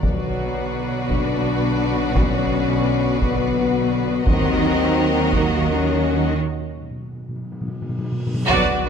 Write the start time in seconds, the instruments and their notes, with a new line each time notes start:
0.02 double bass section B1, cello section B2, trombone section D3 F#3, french horn section F#3, viola section F#4, violin section B4 D5, taiko
1.09 french horn section D4, taiko
2.14 french horn section C#4, taiko
3.21 french horn section B3, taiko
4.25 double bass section D#2, cello section D#3, trombone section F#3 D#4, french horn section C4, viola section F#4, violin section A#4 D#5, taiko
5.32 french horn section A#3, taiko
5.70 french horn section C#4
6.39 reverse cymbal
6.54 timpani B2
6.60 timpani B2
6.68 timpani B2
6.75 timpani B2
6.82 timpani B2
6.91 timpani B2
6.98 timpani B2
7.05 timpani B2
7.13 timpani B2
7.22 timpani B2
7.29 timpani B2
7.36 timpani B2
7.44 timpani B2
7.52 timpani B2
7.61 timpani B2
7.68 timpani B2
7.75 timpani B2
7.82 timpani B2
7.89 timpani B2
7.98 timpani B2
8.04 timpani B2
8.12 timpani B2
8.20 timpani B2
8.27 timpani B2
8.34 timpani B2
8.42 timpani B2
8.47 double bass section B1, trombone section D3 F#3, cello section F#3, violin section F#4, french horn section F#4, viola section F#4 D5, trumpet section F#5, string section F#5, taiko, sub drop
8.51 string section B3 F#4 B4, french horn section B4
8.85 double bass section B1, viola section D4 B4